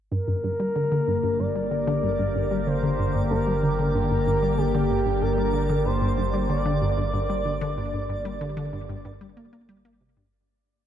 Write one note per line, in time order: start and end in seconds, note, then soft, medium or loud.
0.11 10.30 G1 medium
0.11 0.17 G2 medium
0.11 10.29 D3 medium
0.11 10.29 A#3 medium
0.11 10.29 G4 medium
0.11 1.41 A#4 loud
0.11 10.29 A#4 medium
0.11 10.35 D5 medium
0.28 0.33 G2 medium
0.44 0.49 G2 medium
0.60 0.65 G3 medium
0.76 0.89 D3 medium
0.92 1.01 D3 medium
1.08 1.13 G2 medium
1.23 1.29 G2 medium
1.39 1.45 G2 medium
1.39 2.68 D5 loud
1.55 1.61 G3 medium
1.71 1.85 D3 medium
1.87 1.96 D3 loud
2.03 2.09 G2 medium
2.19 2.24 G2 medium
2.35 2.41 G2 medium
2.51 2.57 G3 medium
2.67 2.81 D3 medium
2.67 3.30 C5 loud
2.83 2.92 D3 medium
2.99 3.04 G2 medium
3.15 3.20 G2 medium
3.31 3.36 G2 medium
3.31 3.91 A#4 loud
3.47 3.52 G3 medium
3.63 3.76 D3 medium
3.79 3.88 D3 medium
3.94 4.00 G2 medium
3.94 4.59 A#4 loud
4.11 4.16 G2 medium
4.27 4.32 G2 medium
4.42 4.48 G3 medium
4.58 4.72 D3 medium
4.58 5.23 G4 loud
4.75 4.84 D3 loud
4.90 4.96 G2 medium
5.06 5.12 G2 medium
5.22 5.28 G2 medium
5.22 5.87 A#4 loud
5.38 5.44 G3 medium
5.54 5.67 D3 medium
5.70 5.79 D3 medium
5.85 5.91 G2 medium
5.85 6.49 C5 loud
6.02 6.07 G2 medium
6.18 6.23 G2 medium
6.34 6.39 G3 medium
6.49 6.63 D3 medium
6.49 9.65 D5 loud
6.66 6.75 D3 loud
6.82 6.87 G2 medium
6.98 7.03 G2 medium
7.14 7.19 G2 medium
7.30 7.35 G3 medium
7.45 7.59 D3 medium
7.61 7.71 D3 loud
7.77 7.83 G2 medium
7.94 7.99 G2 medium
8.09 8.15 G2 medium
8.25 8.31 G3 medium
8.41 8.55 D3 medium
8.57 8.66 D3 medium
8.73 8.79 G2 medium
8.89 8.95 G2 medium
9.05 9.10 G2 medium
9.21 9.27 G3 medium
9.37 9.51 A#3 medium
9.53 9.62 A#3 medium
9.69 9.78 G3 loud
9.85 9.99 A#3 loud
10.01 10.10 C3 medium
10.17 10.26 G2 loud